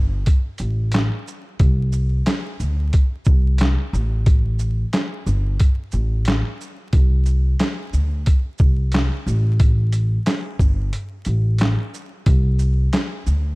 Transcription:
Already playing: upright bass G1
0.26 kick, closed hi-hat
0.58 upright bass A1, closed hi-hat, shaker
0.92 snare, clap, closed hi-hat
1.28 shaker
1.60 upright bass C2, kick, closed hi-hat
1.92 shaker
2.26 snare, clap, closed hi-hat
2.60 upright bass D2, shaker
2.93 kick, closed hi-hat
3.25 upright bass C2, kick, shaker
3.58 snare, clap, closed hi-hat
3.93 upright bass A1, shaker
4.26 kick, closed hi-hat
4.59 shaker
4.93 snare, clap, closed hi-hat
5.27 upright bass G1, shaker
5.60 kick, closed hi-hat
5.92 upright bass A1, shaker
6.25 snare, clap, closed hi-hat
6.61 shaker
6.93 upright bass C2, kick, closed hi-hat
7.26 shaker
7.59 snare, clap, closed hi-hat
7.93 upright bass D2, shaker
8.26 kick, closed hi-hat
8.58 upright bass C2, kick, shaker
8.92 snare, clap, closed hi-hat
9.26 upright bass A1, shaker
9.60 kick, closed hi-hat
9.92 closed hi-hat, shaker
10.26 snare, clap, closed hi-hat
10.59 upright bass G1, kick, shaker
10.93 closed hi-hat
11.25 upright bass A1, closed hi-hat, shaker
11.58 snare, clap, closed hi-hat
11.94 shaker
12.26 upright bass C2, kick, closed hi-hat
12.59 shaker
12.93 snare, clap, closed hi-hat
13.27 upright bass D2, shaker

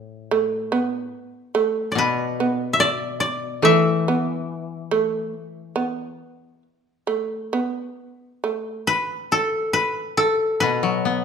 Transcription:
Already playing: koto A2 A4
0.31 shamisen A3
0.72 shamisen B3
1.55 shamisen A3
1.92 koto B2 D5
1.98 koto B4
2.40 shamisen B3
2.73 koto E5
2.80 koto D5
3.20 koto D5
3.62 koto E3 E5, shamisen A3
4.08 shamisen B3
4.91 shamisen A3
5.76 shamisen B3
5.85 koto D#5
6.39 koto D5
7.07 shamisen A3
7.53 shamisen B3
8.44 shamisen A3
8.87 koto B4
9.32 koto A4
9.73 koto B4
10.17 koto A4
10.60 koto B2 B4
10.83 koto F#3
11.05 koto B3

